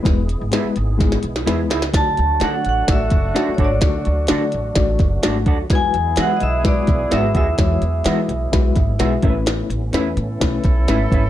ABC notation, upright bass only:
X:1
M:4/4
L:1/16
Q:1/4=127
K:Dlyd
V:1 name="Upright bass" clef=bass
E,,,3 G,,, z2 G,,,4 B,,,2 E,,2 C,,2 | D,,2 D,,2 D,2 A,,,2 A,,,2 F,,,2 z2 G,,,2 | D,,2 D,,2 D,2 A,,,2 A,,,2 F,,,2 G,,,2 ^D,,2 | E,,2 E,,2 E,2 B,,,4 B,,,2 G,,,2 ^D,,2 |
E,,2 E,,2 E,2 B,,,2 B,,,2 G,,,2 B,,,2 A,,,2- | A,,,2 A,,,2 E,,2 A,,2 B,,,2 B,,,2 G,,,2 G,,,2 |]